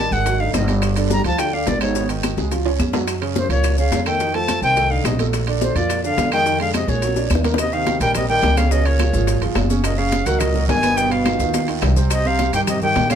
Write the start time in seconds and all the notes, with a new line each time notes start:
Already playing: D#3 A5
0.11 G#1 D#3 G#3 G#4 F#5, high bongo, high conga, short guiro, maracas
0.26 F#3 F#4, high bongo, high conga, high timbale, long guiro, maracas
0.40 D3 D#4 D#5 F5, high bongo, high conga
0.53 G1 C3 D#5, high bongo, low bongo, high conga, high timbale, low timbale, short guiro, claves, maracas
0.68 G3 G4, high bongo, high conga, high timbale, short guiro, maracas
0.82 high bongo, high timbale, long guiro, claves, maracas
0.96 D3 D4, high conga, high timbale, maracas
1.10 G3 A#5, high bongo, high conga, low timbale, short guiro, maracas
1.24 D2 F3 F4 A5, high bongo, high conga, high timbale, short guiro, maracas
1.38 D3 G5, high bongo, high conga, high timbale, long guiro, claves, maracas
1.53 D3 D4 D5 F5, high bongo, high conga
1.67 G#1 A#2 D5, high bongo, low bongo, high conga, high timbale, low timbale, short guiro, maracas
1.81 G#2 D#3 D#4 C#5, high bongo, high conga, high timbale, short guiro, claves, maracas
1.95 B2 B3, high bongo, high conga, long guiro, maracas
2.09 D#3 D#4, high conga, high timbale, maracas
2.23 high bongo, high conga, high timbale, low timbale, short guiro, claves, maracas
2.37 C#2 G#3 G#4, high bongo, high conga, short guiro, maracas
2.51 F3 F4, high bongo, high conga, high timbale, long guiro, maracas
2.65 C#4 C#5, high conga, high timbale
2.79 F#2, high conga, low timbale, short guiro, claves, maracas
2.93 F#3 F#4, low bongo, high conga, low timbale, short guiro, maracas
3.07 high bongo, high conga, high timbale, long guiro, claves, maracas
3.22 C#3 C#4, high conga, high timbale
3.36 F#2 C5, high bongo, high conga, low timbale, short guiro, maracas
3.49 C#2 A#2 F3 F4 C#5, high conga, high timbale, short guiro, maracas
3.64 high bongo, high conga, high timbale, long guiro, claves, maracas
3.78 C#3 C#4 C#5 F5, high bongo, high conga, maracas
3.91 F2, high bongo, low bongo, high conga, high timbale, low timbale, short guiro, maracas
4.06 D#3 A3 A4 G5, high bongo, high conga, high timbale, short guiro, claves, maracas
4.20 D#3 D#4, high bongo, high conga, long guiro, maracas
4.34 F3 A3 A4 A5, high conga, high timbale
4.48 high bongo, high conga, high timbale, low timbale, short guiro, claves, maracas
4.62 C2 D#3 C4 C5 G5, high bongo, high conga, short guiro, maracas
4.76 A3 A4, high bongo, high conga, high timbale, long guiro, maracas
4.91 D3 D#4 D#5 F5, high bongo, high conga
5.04 A#1 C3 D#5, high bongo, low bongo, high conga, high timbale, low timbale, short guiro, claves, maracas
5.19 A3 A4, high bongo, high conga, high timbale, short guiro, maracas
5.33 high bongo, high conga, high timbale, long guiro, claves, maracas
5.47 D3 D4, high conga, high timbale
5.61 A2 C5, high bongo, high conga, low timbale, short guiro, maracas
5.75 F2 A#2 F3 F4 D5, high bongo, high conga, high timbale, short guiro, maracas
5.89 high bongo, high conga, high timbale, long guiro, claves, maracas
6.04 D3 D4 D5 F5, high bongo, high conga, maracas
6.17 F2, high bongo, low bongo, high conga, high timbale, low timbale, short guiro, maracas
6.32 D#3 G#3 G#4 G5, high bongo, high timbale, short guiro, claves, maracas
6.46 D#3 D#4, high bongo, long guiro, maracas
6.60 D3 G#3 G#4 F5, high conga, high timbale
6.74 C3 D#5, high bongo, high conga, high timbale, low timbale, short guiro, claves, maracas
6.88 A#1 A#2 G#3 G#4 C#5, high bongo, high conga, short guiro, maracas
7.02 F#3 F#4, high conga, high timbale, long guiro, maracas
7.07 high bongo
7.16 D4 D5, high bongo, high conga, maracas
7.30 D#2, high conga, high timbale, low timbale, short guiro, claves, maracas
7.35 low bongo
7.44 A#3 A#4, low bongo, high conga, high timbale, short guiro, maracas
7.54 low bongo
7.58 C3 D#5, high bongo, high timbale, long guiro, claves, maracas
7.73 C3 D#3 D#4 D#5 F5, high conga, maracas
7.86 high bongo, high conga, high timbale, low timbale, short guiro, maracas
8.00 A#1 D#3 G3 G4 A#4 G5, high timbale, short guiro, maracas
8.15 C3 D#5, high bongo, high conga, low conga, high timbale, long guiro, claves, maracas
8.29 D#3 G3 G4 A#4 G5, high conga, maracas
8.42 C#2, high bongo, low bongo, high conga, high timbale, low timbale, short guiro, maracas
8.57 C#3 D3 C#4 C#5 F5, high conga, high timbale, short guiro, claves, maracas
8.71 B2 C#3 C#4 C#5 D#5, high bongo, long guiro, maracas
8.85 A#2 C#5, high bongo, high conga, high timbale, maracas
8.99 F3 F4 G#4, high bongo, high conga, high timbale, low timbale, short guiro, claves, maracas
9.13 G#1 F3 F4 G#4, high bongo, high conga, short guiro, maracas
9.27 high bongo, high conga, high timbale, long guiro, maracas
9.41 G1 F3 F4 G#4, high bongo, high conga, high timbale, maracas
9.55 F#1, high bongo, low bongo, high conga, high timbale, low timbale, short guiro, claves, maracas
9.70 C#3 C#4 C#5, high conga, short guiro, maracas
9.84 A#2 D#5, high bongo, high timbale, long guiro, claves, maracas
9.98 C#3 C#4 C#5 F5, high conga, maracas
10.12 high bongo, high conga, high timbale, low timbale, short guiro, maracas
10.26 C#2 D#3 F#3 F#4 A#4 F#5, high timbale, short guiro, maracas
10.39 A#2 D#5, high bongo, high conga, low conga, high timbale, long guiro, claves, maracas
10.54 F#3 F#4 A#4, high conga, low conga, maracas
10.68 G1 D#3 G#5, high bongo, low bongo, high conga, high timbale, low timbale, short guiro, maracas
10.83 B2 B3 B4, high conga, high timbale, short guiro, claves, maracas
10.96 B2 D#3 B3 B4 G5, high bongo, maracas
11.11 B2 F5, high bongo, high conga, high timbale, maracas
11.25 D#3 D#4 F4, high bongo, high conga, high timbale, low timbale, short guiro, claves, maracas
11.39 D#2 D#3 D#4 F4, high bongo, high conga, short guiro, maracas
11.54 high bongo, high conga, high timbale, long guiro, maracas
11.68 D#3 D#4 F4, high bongo, high timbale, maracas
11.82 C2, high bongo, low bongo, high timbale, low timbale, short guiro, claves, maracas
11.96 C3 C4 C5, low conga, short guiro, maracas
12.10 C3 D#5, high bongo, high conga, high timbale, long guiro, claves, maracas
12.25 C3 C4 C5 F5, high conga, maracas
12.39 high bongo, high conga, high timbale, low timbale, short guiro, maracas
12.53 G2 D#3 D#4 G4 G5, high timbale, short guiro, maracas
12.67 C3 D#5, high bongo, high conga, low conga, high timbale, long guiro, claves, maracas
12.82 D#3 D#4 G4 G5, high conga, low conga, maracas
12.96 A#1, high bongo, low bongo, high conga, high timbale, low timbale, short guiro, maracas
13.10 C#3 D3 C#4 C#5 F5, high conga, high timbale, short guiro, claves, maracas